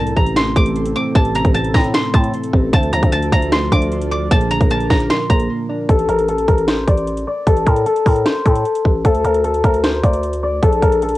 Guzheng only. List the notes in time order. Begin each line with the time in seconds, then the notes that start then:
Already playing: A5
0.16 A#5
0.36 C6
0.56 D6
0.96 D6
1.15 A5
1.35 A#5
1.54 A5
1.74 A#5
1.94 C6
2.14 A5
2.73 A5
2.93 A#5
3.12 A5
3.32 A#5
3.52 C6
3.72 D6
4.11 D6
4.31 A5
4.51 A#5
4.71 A5
4.90 A#5
5.10 C6
5.30 A#5
5.89 A4
6.09 A#4
6.28 A4
6.48 A#4
6.68 C5
6.88 D5
7.27 D5
7.47 A4
7.67 A#4
7.86 A4
8.06 A#4
8.26 C5
8.45 A4
9.05 A4
9.25 A#4
9.44 A4
9.64 A#4
9.84 C5
10.04 D5
10.43 D5
10.63 A4
10.82 A#4
11.02 A4